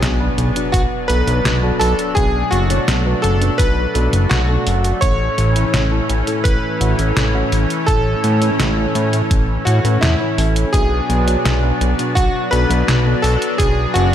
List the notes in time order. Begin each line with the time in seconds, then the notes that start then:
Already playing: B2 F#3 B3 D4 F#4 G#4 C#5 G#5, sub drop
0.02 B1, snare, closed hi-hat
0.20 B2 D4 F#4 B4
0.38 B1, closed hi-hat
0.56 B2 D4 F#4 B4, closed hi-hat
0.72 B1 F#4 F#5, kick, closed hi-hat
1.08 B1 B2 D4 F#4 A4 B4 B5, closed hi-hat
1.27 B1, closed hi-hat
1.45 B1, snare, closed hi-hat
1.63 B2 D4 F#4 A4
1.79 B1 A4 A5, open hi-hat
1.99 closed hi-hat
2.15 B1 B2 A3 D4 F#4 G#4 B4 G#5, kick, closed hi-hat
2.51 F#1 F#4 F#5, closed hi-hat
2.70 B2 D4 F#4 C#5, closed hi-hat
2.88 B1, snare, closed hi-hat
3.06 B2 D4 F#4 B4
3.22 F#1 A4 A5, closed hi-hat
3.42 B2 D4 F#4 B4, closed hi-hat
3.58 B1 B4 B5, kick, closed hi-hat
3.95 B1 B2 D4 F#4 A4, closed hi-hat
4.13 F#1, closed hi-hat
4.29 B1 F#4 F#5, snare, closed hi-hat
4.49 B2 D4 F#4 A4
4.67 F#1, open hi-hat
4.84 closed hi-hat
5.01 A1 A2 E3 C#4 E4 A4 C#5 C#6, kick, closed hi-hat
5.38 A1, closed hi-hat
5.56 A2 C#4 E4 B4, closed hi-hat
5.74 A1, snare, closed hi-hat
5.92 A2 C#4 E4 A4
6.09 A1, closed hi-hat
6.27 A2 C#4 E4 A4, closed hi-hat
6.44 A1 B4 B5, kick, closed hi-hat
6.81 A1 A2 C#4 E4 F#4, closed hi-hat
6.99 A1, closed hi-hat
7.16 A1, snare, closed hi-hat
7.34 A2 C#4 E4 F#4
7.52 A1, open hi-hat
7.70 closed hi-hat
7.86 A1 A2 C#4 E4 A4 A5, kick, closed hi-hat
8.24 A2, closed hi-hat
8.42 A2 C#4 E4 B4, closed hi-hat
8.60 A1, snare, closed hi-hat
8.77 A2 C#4 E4 A4
8.95 A2, closed hi-hat
9.13 A2 C#4 E4 A4, closed hi-hat
9.31 A1, kick, closed hi-hat
9.65 A2 F#4 F#5, closed hi-hat
9.84 A2 C#4 E4 B4, closed hi-hat
10.01 E2 E4 E5, snare, closed hi-hat
10.20 A2 C#4 E4 C#5
10.38 A1 C#4 E4 A4, open hi-hat
10.56 closed hi-hat
10.73 B1 B2 F#3 B3 D4 F#4 G#4 B4 G#5, kick, closed hi-hat
11.09 B1, closed hi-hat
11.27 B2 D4 F#4 C#5, closed hi-hat
11.45 B1, snare, closed hi-hat
11.63 B2 D4 F#4 B4
11.81 B1, closed hi-hat
11.99 B2 D4 F#4 B4, closed hi-hat
12.15 B1 F#4 F#5, kick, closed hi-hat
12.51 B1 B2 D4 F#4 A4 B4 B5, closed hi-hat
12.70 B1, closed hi-hat
12.88 B1, snare, closed hi-hat
13.06 B2 D4 F#4 A4
13.22 B1 A4 A5, open hi-hat
13.42 closed hi-hat
13.58 B1 B2 D4 F#4 G#4 B4 G#5, kick, closed hi-hat
13.94 F#1 F#4 F#5, closed hi-hat